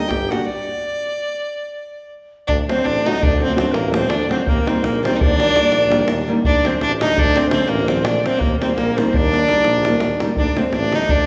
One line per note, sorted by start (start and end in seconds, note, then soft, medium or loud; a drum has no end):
0.00 0.10 D#4 loud
0.00 0.10 D#5 medium
0.09 0.32 G1 medium
0.09 0.31 G4 medium
0.09 0.32 G5 medium
0.09 davul high medium
0.09 davul low medium
0.22 davul high soft
0.29 0.40 G3 medium
0.29 0.40 A#3 medium
0.29 0.40 D4 medium
0.29 0.46 F#4 medium
0.29 0.40 G4 medium
0.29 0.48 F#5 medium
0.29 davul high medium
0.47 2.11 D5 medium
2.48 2.61 D2 medium
2.48 2.57 D4 loud
2.48 2.57 D5 medium
2.48 davul low medium
2.69 2.79 F#3 medium
2.69 2.79 A3 medium
2.69 2.86 C4 medium
2.69 2.79 D4 medium
2.69 2.79 F#4 medium
2.69 2.87 C5 medium
2.69 davul high medium
2.84 3.08 A1 medium
2.84 3.09 D4 loud
2.84 3.07 D5 medium
2.84 davul high medium
2.96 davul high soft
3.06 3.16 F#3 medium
3.06 3.16 A3 medium
3.06 3.16 D4 medium
3.06 3.25 D#4 medium
3.06 3.16 F#4 medium
3.06 3.23 D#5 medium
3.06 davul high medium
3.22 3.53 D2 medium
3.22 3.42 D4 loud
3.22 3.40 D5 loud
3.22 davul low loud
3.33 davul high soft
3.39 3.50 F#3 medium
3.39 3.50 A3 medium
3.39 3.57 C4 loud
3.39 3.50 D4 medium
3.39 3.51 F#4 medium
3.39 3.55 C5 medium
3.50 davul high soft
3.54 3.65 F#3 medium
3.54 3.66 A3 medium
3.54 3.75 C4 medium
3.54 3.66 D4 medium
3.54 3.66 F#4 medium
3.54 3.73 C5 medium
3.54 davul high medium
3.67 davul high soft
3.72 4.11 A1 loud
3.72 3.94 A#3 medium
3.72 3.92 A#4 loud
3.72 davul high medium
3.90 4.02 F#3 medium
3.90 4.02 A3 medium
3.90 4.03 D4 medium
3.90 4.03 F#4 medium
3.90 4.11 C5 medium
3.90 davul high medium
3.94 4.11 C4 loud
4.02 davul high soft
4.09 4.22 D2 loud
4.09 4.30 D4 medium
4.09 4.29 D5 loud
4.09 davul high medium
4.29 4.40 F#3 medium
4.29 4.40 A3 medium
4.29 4.46 C4 medium
4.29 4.40 D4 medium
4.29 4.40 F#4 medium
4.29 4.46 C5 medium
4.29 davul high medium
4.46 4.59 D#2 medium
4.46 4.69 A#3 loud
4.46 4.70 A#4 medium
4.46 davul low loud
4.66 4.76 D#3 medium
4.66 4.77 G3 medium
4.66 4.77 A#3 medium
4.66 4.84 C4 medium
4.66 4.77 D#4 medium
4.66 4.86 C5 loud
4.66 davul high medium
4.83 5.06 A#1 medium
4.83 5.04 A#3 medium
4.83 5.03 A#4 medium
4.83 davul high medium
4.95 davul high soft
5.03 5.14 D#3 medium
5.03 5.14 G3 medium
5.03 5.14 A#3 medium
5.03 5.17 C4 loud
5.03 5.15 D#4 medium
5.03 5.16 C5 medium
5.03 davul high medium
5.14 5.21 D#4 medium
5.14 5.22 D#5 medium
5.20 5.51 D#2 medium
5.20 6.28 D4 loud
5.20 6.29 D5 loud
5.20 davul low loud
5.31 davul high soft
5.38 5.48 D#3 medium
5.38 5.49 G3 medium
5.38 5.49 A#3 medium
5.38 5.49 D#4 medium
5.38 davul high medium
5.48 davul high soft
5.55 5.65 D#3 medium
5.55 5.65 G3 medium
5.55 5.65 A#3 medium
5.55 5.65 D#4 medium
5.55 davul high medium
5.64 davul high soft
5.71 6.10 A#1 loud
5.71 davul high medium
5.90 6.01 D#3 medium
5.90 6.01 G3 medium
5.90 6.01 A#3 medium
5.90 6.02 D#4 medium
5.90 davul high medium
6.01 davul high soft
6.08 6.20 D#2 loud
6.08 davul high medium
6.28 6.38 D#3 medium
6.28 6.38 G3 medium
6.28 6.39 A#3 medium
6.28 6.39 D#4 medium
6.45 6.58 D2 medium
6.45 6.67 D4 loud
6.45 6.68 D5 loud
6.45 davul low loud
6.64 6.74 D3 medium
6.64 6.75 F#3 medium
6.64 6.75 A3 medium
6.64 6.82 C4 medium
6.64 6.75 D4 medium
6.64 6.83 C5 medium
6.64 davul high medium
6.81 7.04 A1 medium
6.81 6.91 D4 loud
6.81 6.92 D5 medium
6.81 davul high medium
6.91 davul high soft
7.01 7.12 D3 medium
7.01 7.12 F#3 medium
7.01 7.12 A3 medium
7.01 7.12 D4 medium
7.01 7.21 D#4 loud
7.01 7.20 D#5 medium
7.01 davul high medium
7.18 7.49 D2 loud
7.18 7.38 D4 loud
7.18 7.39 D5 loud
7.18 davul low loud
7.27 davul high soft
7.36 7.46 D3 medium
7.36 7.46 F#3 soft
7.36 7.47 A3 medium
7.36 7.51 C4 loud
7.36 7.47 D4 medium
7.36 7.53 C5 medium
7.36 davul high medium
7.44 davul high soft
7.51 7.61 D3 medium
7.51 7.62 F#3 medium
7.51 7.62 A3 medium
7.51 7.70 C4 medium
7.51 7.62 D4 medium
7.51 7.71 C5 medium
7.51 davul high medium
7.59 davul high soft
7.68 8.07 A1 loud
7.68 7.90 A#3 medium
7.68 7.90 A#4 loud
7.68 davul high medium
7.88 7.98 D3 medium
7.88 7.98 F#3 medium
7.88 7.98 A3 medium
7.88 8.06 C4 medium
7.88 7.99 D4 medium
7.88 8.08 C5 medium
7.88 davul high medium
7.96 davul high soft
8.04 8.17 A#1 loud
8.04 8.24 D4 medium
8.04 8.26 D5 loud
8.04 davul high loud
8.23 8.34 D3 medium
8.23 8.34 F#3 medium
8.23 8.35 A3 medium
8.23 8.41 C4 medium
8.23 8.35 D4 medium
8.23 8.43 C5 medium
8.23 davul high medium
8.39 8.54 D#2 medium
8.39 8.60 A#3 medium
8.39 8.62 A#4 medium
8.39 davul low medium
8.60 8.71 D#3 medium
8.60 8.71 G3 medium
8.60 8.71 A#3 medium
8.60 8.75 C4 medium
8.60 8.72 D#4 medium
8.60 8.78 C5 medium
8.60 davul high medium
8.70 davul high soft
8.76 9.00 A#1 medium
8.76 8.99 A#3 loud
8.76 9.00 A#4 medium
8.76 davul high medium
8.97 9.07 D#3 medium
8.97 9.08 G3 medium
8.97 9.08 A#3 medium
8.97 9.14 C4 medium
8.97 9.09 D#4 medium
8.97 9.18 C5 medium
8.97 davul high medium
9.13 9.44 D#2 loud
9.13 10.20 D4 loud
9.13 10.22 D5 loud
9.13 davul low loud
9.24 davul high soft
9.31 9.41 D#3 soft
9.31 9.41 G3 soft
9.31 9.41 A#3 soft
9.31 9.42 D#4 medium
9.31 davul high medium
9.41 davul high soft
9.47 9.57 D#3 medium
9.47 9.57 G3 medium
9.47 9.57 A#3 medium
9.47 9.58 D#4 medium
9.47 davul high medium
9.57 davul high soft
9.64 10.02 A#1 loud
9.64 davul high medium
9.82 9.93 D#3 medium
9.82 9.93 G3 medium
9.82 9.94 A#3 medium
9.82 9.94 D#4 medium
9.82 davul high medium
10.00 10.13 D#2 medium
10.00 davul high medium
10.11 davul high soft
10.20 10.30 D#3 medium
10.20 10.30 G3 medium
10.20 10.30 A#3 medium
10.20 10.31 D#4 medium
10.20 davul high medium
10.28 davul high soft
10.37 10.49 D2 medium
10.37 10.59 D4 loud
10.37 10.58 D5 medium
10.37 davul low medium
10.55 10.66 D3 medium
10.55 10.66 F#3 medium
10.55 10.66 A3 medium
10.55 10.76 C4 medium
10.55 10.66 D4 medium
10.55 10.74 C5 medium
10.55 davul high medium
10.73 10.95 A1 medium
10.73 10.97 D4 loud
10.73 10.95 D5 medium
10.73 davul high medium
10.83 davul high soft
10.92 11.02 D3 medium
10.92 11.02 F#3 medium
10.92 11.03 A3 medium
10.92 11.03 D4 medium
10.92 11.12 D#4 loud
10.92 11.12 D#5 medium
10.92 davul high medium
11.09 11.26 D2 medium
11.09 11.26 D4 loud
11.09 11.26 D5 medium
11.09 davul low loud
11.18 davul high soft